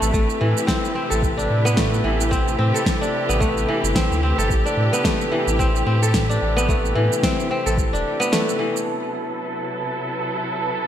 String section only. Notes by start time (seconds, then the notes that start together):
Already playing: C3 A3 E4 B4
0.14 G4
8.86 C3 F#3 E4 A4 B4